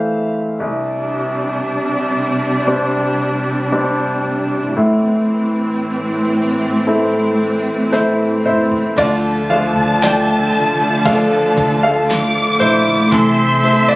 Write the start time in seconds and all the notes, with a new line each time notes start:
Already playing: C2 E3 A3 C4 E4 C5 E5 F5
0.60 C2 C3 G3 D4
2.67 G3 C4 D4
3.72 G3 C4 D4
4.76 A2 E3 C4
6.87 A3 C4 E4
7.92 A3 C4 E4 C5, snare
8.45 E4 C5 E5, mid tom
8.72 floor tom
8.96 D2 D3 F3 A3 D4 F4 D5 A5, kick, crash, ride
9.01 A4
9.50 F3 A3 D4 A4 F5, ride
9.76 D2
10.02 D5 G5, snare, ride, tambourine
10.54 C2, ride
11.04 D3 F3 A3 D4 F4 A4 F5, kick, ride
11.09 A4
11.57 D2, kick, ride
11.83 A4 F5
12.09 D6, snare, ride, tambourine
12.35 ride
12.60 A#1 E4 C5, ride
13.11 C2 C3 E3 A3 C4 E4 A4 E5 C6, kick, ride
13.62 C3 A3 C4 E4 A4, ride
13.88 C2 F4 D5